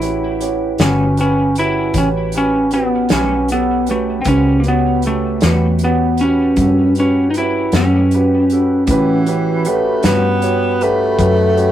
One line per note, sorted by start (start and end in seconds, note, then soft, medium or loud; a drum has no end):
0.00 0.76 A1 medium
0.00 4.22 C#4 medium
0.00 0.31 C#4 medium
0.00 0.84 E4 loud
0.00 4.21 F#4 medium
0.00 0.31 F#4 soft
0.00 4.22 G4 medium
0.00 0.31 G4 soft
0.00 4.22 B4 medium
0.00 0.31 C#5 medium
0.00 closed hi-hat medium
0.41 0.70 C#4 medium
0.41 0.70 F#4 soft
0.41 0.70 G4 medium
0.41 0.70 C#5 medium
0.41 closed hi-hat medium
0.78 1.92 G1 medium
0.78 1.04 A2 soft
0.78 1.03 G3 medium
0.78 1.08 C#4 medium
0.78 1.03 C#4 medium
0.78 1.20 C#4 medium
0.78 1.08 F#4 soft
0.78 1.03 F#4 medium
0.78 1.08 G4 soft
0.78 1.09 B4 medium
0.78 snare loud
0.78 closed hi-hat medium
1.17 1.47 C#4 medium
1.17 1.55 C#4 medium
1.17 1.47 F#4 soft
1.17 1.47 G4 soft
1.17 1.47 B4 medium
1.17 closed hi-hat medium
1.55 1.86 C#4 medium
1.55 1.98 E4 loud
1.55 1.86 F#4 medium
1.55 1.86 G4 soft
1.55 1.86 B4 medium
1.55 closed hi-hat medium
1.94 3.07 A1 medium
1.94 2.24 C#4 soft
1.94 2.24 F#4 soft
1.94 2.24 G4 soft
1.94 2.24 C#5 medium
1.94 kick medium
1.94 closed hi-hat medium
1.98 2.08 C#4 medium
2.32 2.63 C#4 medium
2.32 2.63 F#4 soft
2.32 2.63 G4 soft
2.32 2.63 B4 medium
2.32 closed hi-hat medium
2.38 2.73 C#4 medium
2.71 3.12 B3 medium
2.71 3.02 C#4 medium
2.71 3.01 F#4 soft
2.71 3.01 G4 soft
2.71 3.02 B4 medium
2.71 closed hi-hat medium
3.09 4.23 B1 medium
3.09 3.35 A2 medium
3.09 3.34 G3 medium
3.09 3.34 C#4 medium
3.09 3.34 F#4 medium
3.09 3.41 F#4 soft
3.09 snare loud
3.09 closed hi-hat medium
3.13 3.52 C#4 medium
3.13 3.41 C#4 medium
3.13 3.41 G4 soft
3.13 3.41 B4 medium
3.48 3.90 B3 medium
3.48 3.80 C#4 medium
3.48 closed hi-hat medium
3.52 3.80 F#4 medium
3.52 3.80 G4 medium
3.52 3.80 A4 medium
3.87 4.17 C#4 medium
3.87 4.17 F#4 soft
3.87 4.17 G4 soft
3.87 4.17 B4 medium
3.87 closed hi-hat medium
3.91 4.21 A3 medium
4.21 5.38 C#2 medium
4.21 4.27 C4 medium
4.21 closed hi-hat medium
4.25 4.62 C#4 medium
4.25 4.56 C#4 medium
4.25 4.60 C#4 medium
4.25 4.56 F#4 medium
4.25 4.63 G4 medium
4.25 4.56 G4 medium
4.25 4.65 G#4 medium
4.25 4.56 B4 medium
4.25 4.65 C5 medium
4.25 kick loud
4.60 4.66 A#3 medium
4.60 8.84 C#4 medium
4.60 8.84 F#4 medium
4.60 8.84 B4 medium
4.60 closed hi-hat medium
4.64 4.95 C#4 medium
4.64 4.95 F#4 soft
4.64 8.85 G4 medium
4.64 4.95 G4 soft
4.64 4.95 C#5 medium
4.68 5.03 B3 medium
5.02 5.33 C#4 medium
5.02 5.33 F#4 soft
5.02 5.34 G4 soft
5.02 5.33 A4 medium
5.02 closed hi-hat medium
5.07 5.84 A3 medium
5.41 6.54 E2 medium
5.41 5.66 A2 soft
5.41 5.66 G3 medium
5.41 5.66 C#4 medium
5.41 5.72 C#4 soft
5.41 5.65 F#4 medium
5.41 5.72 F#4 soft
5.41 5.72 G4 soft
5.41 5.72 B4 medium
5.41 snare loud
5.41 closed hi-hat medium
5.79 closed hi-hat medium
5.83 6.22 B3 medium
5.83 6.11 C#4 medium
5.83 6.11 F#4 soft
5.83 6.11 G4 medium
5.83 6.11 B4 medium
6.17 6.93 C#4 loud
6.17 closed hi-hat medium
6.22 6.49 C#4 medium
6.22 6.50 F#4 medium
6.22 6.50 G4 soft
6.22 6.50 B4 medium
6.56 7.69 G2 medium
6.56 6.88 F#4 soft
6.56 6.88 G4 soft
6.56 kick medium
6.56 closed hi-hat medium
6.61 6.88 C#4 soft
6.61 6.88 A4 medium
6.95 7.27 C#4 medium
6.95 7.26 F#4 soft
6.95 7.26 G4 soft
6.95 7.27 B4 medium
6.95 closed hi-hat medium
7.00 7.30 C#4 medium
7.30 7.36 D#4 medium
7.30 closed hi-hat medium
7.37 7.65 C#4 soft
7.37 7.76 E4 medium
7.37 7.65 F#4 soft
7.37 7.65 G4 soft
7.37 7.65 B4 medium
7.72 8.85 F#2 medium
7.72 7.97 A2 soft
7.72 7.97 G3 medium
7.72 7.97 C#4 medium
7.72 8.03 C#4 soft
7.72 7.97 F#4 medium
7.72 8.04 F#4 soft
7.72 8.03 G4 soft
7.72 8.03 A4 medium
7.72 snare medium
7.72 closed hi-hat medium
7.77 9.25 C#4 medium
8.11 8.42 C#4 medium
8.11 8.42 F#4 soft
8.11 8.42 G4 medium
8.11 8.42 B4 medium
8.11 closed hi-hat medium
8.50 8.80 C#4 medium
8.50 8.80 F#4 soft
8.50 8.80 G4 soft
8.50 8.80 A4 medium
8.50 closed hi-hat medium
8.86 10.00 A2 medium
8.86 9.69 E3 medium
8.86 11.72 C#4 medium
8.86 11.72 F#4 medium
8.86 11.72 G4 medium
8.86 11.72 B4 medium
8.86 kick loud
8.86 closed hi-hat medium
8.91 9.19 C#4 medium
8.91 9.19 F#4 medium
8.91 9.19 G4 medium
8.91 9.19 B4 medium
9.26 9.56 C#4 medium
9.26 9.56 F#4 medium
9.26 9.56 G4 medium
9.26 9.56 B4 medium
9.26 closed hi-hat medium
9.65 10.07 A3 medium
9.65 9.95 C#4 medium
9.65 9.95 F#4 medium
9.65 9.95 G4 medium
9.65 9.95 B4 medium
9.65 closed hi-hat medium
10.03 11.16 G2 medium
10.03 10.28 A2 medium
10.03 10.28 G3 medium
10.03 10.85 B3 medium
10.03 10.27 C#4 medium
10.03 10.33 C#4 medium
10.03 10.27 F#4 medium
10.03 10.34 F#4 soft
10.03 10.34 G4 soft
10.03 10.34 B4 medium
10.03 snare loud
10.03 closed hi-hat medium
10.42 10.72 C#4 medium
10.42 10.72 F#4 medium
10.42 10.72 G4 medium
10.42 10.72 C#5 medium
10.42 closed hi-hat medium
10.81 11.72 A3 loud
10.81 11.10 C#4 medium
10.81 11.10 F#4 medium
10.81 11.10 G4 medium
10.81 11.10 B4 medium
10.81 closed hi-hat medium
11.19 11.72 F#2 medium
11.19 11.49 C#4 medium
11.19 11.49 F#4 soft
11.19 11.48 G4 soft
11.19 11.49 B4 medium
11.19 kick medium
11.19 closed hi-hat medium
11.56 11.72 C#4 medium
11.56 11.72 F#4 medium
11.56 11.72 G4 medium
11.56 11.72 C#5 medium
11.56 closed hi-hat medium